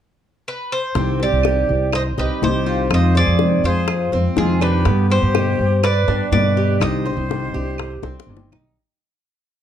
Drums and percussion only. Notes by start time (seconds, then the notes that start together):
0.95 high bongo
1.20 high bongo
1.43 high bongo, claves
1.93 high bongo, claves
2.18 high bongo
2.43 high bongo, low bongo
2.67 high bongo
2.91 high bongo, claves
3.15 high bongo
3.39 high bongo
3.88 high bongo, claves
4.12 high bongo
4.37 high bongo, low bongo
4.61 high bongo, claves
4.85 high bongo
5.10 high bongo
5.35 high bongo, claves
5.83 high bongo, claves
6.08 high bongo
6.33 high bongo, low bongo
6.57 high bongo
6.81 high bongo, claves
7.07 high bongo
7.31 high bongo
7.78 high bongo, claves
8.03 high bongo
8.20 high bongo
8.37 low bongo
8.52 low bongo, claves